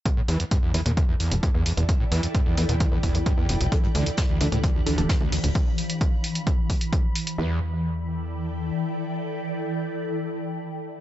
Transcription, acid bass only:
X:1
M:4/4
L:1/16
Q:1/4=131
K:Em
V:1 name="Acid bass" clef=bass
E,, A,, E, E,, G,, E,, E, ^A,, D,, E,, E,, G,, G,, E,, E,, E,,, | E,, A,, E, E,, G,, E,, E, ^A,, D,, E,, E,, G,, G,, E,, E,, E,,, | D,, G,, D, D,, =F,, D,, D, A,, C,, D,, D,, F,, F,, D,, D,, D,,, | z16 |
E,,2 z12 z2 | z16 |]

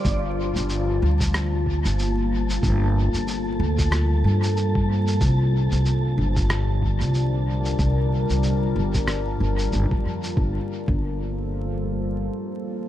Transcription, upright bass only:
X:1
M:4/4
L:1/16
Q:"Swing 16ths" 1/4=93
K:Gm
V:1 name="Upright bass" clef=bass
G,,,3 G,,,3 D,,4- D,, G,,,4- G,,, | G,,,3 G,,,3 D,,4 G,,6 | C,,3 C,,3 G,,,4- G,,, C,,4- C,, | C,,3 C,,3 G,,,4 G,,,2 G,,, G,,, F,,2 |
G,,, z2 G,,,8- G,,, z4 |]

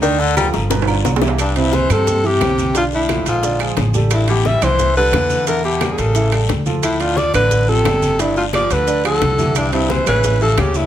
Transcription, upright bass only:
X:1
M:4/4
L:1/8
Q:1/4=176
K:C
V:1 name="Upright bass" clef=bass
D,,3 G,,,3 C,,2- | C,,3 G,,3 B,,,2- | B,,,3 _B,,,3 A,,,2- | A,,,3 C,,3 E,,2- |
E,,3 A,,,3 D,,2- | D,,3 A,,,3 z2 | z3 D,,3 C,,2- | C,,3 A,,,3 D,,2 |]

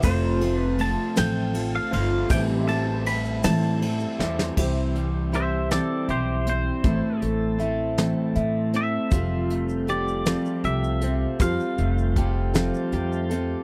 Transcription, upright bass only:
X:1
M:6/8
L:1/16
Q:3/8=53
K:Flyd
V:1 name="Upright bass" clef=bass
F,,,6 A,,,4 G,,,2 | A,,,6 A,,4 E,,2 | C,,8 B,,,4 | A,,, z A,,,6 A,,4 |
F,,,8 C,,4 | F,, z F,,,6 F,,4 |]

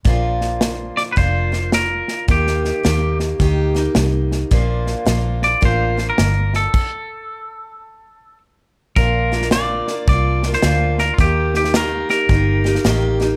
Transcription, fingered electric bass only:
X:1
M:4/4
L:1/8
Q:"Swing" 1/4=108
K:Bb
V:1 name="Fingered electric bass" clef=bass
B,,,4 F,,,4 | E,,2 E,,2 D,,2 C,,2 | B,,,2 B,,,2 A,,,2 G,,,2 | z8 |
B,,,4 C,,2 D,,2 | E,,4 G,,,2 A,,,2 |]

